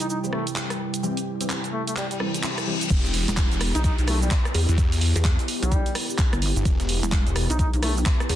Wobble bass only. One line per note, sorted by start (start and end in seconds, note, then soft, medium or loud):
3.28 3.49 E1 medium
3.75 3.96 B1 loud
3.98 4.30 B1 medium
4.54 4.66 E2 loud
5.16 5.37 E2 loud
5.63 5.84 B1 medium
6.33 6.54 G1 loud
7.03 7.24 E1 loud
7.50 7.71 B1 loud
7.73 8.05 B1 medium
8.29 8.36 E2 loud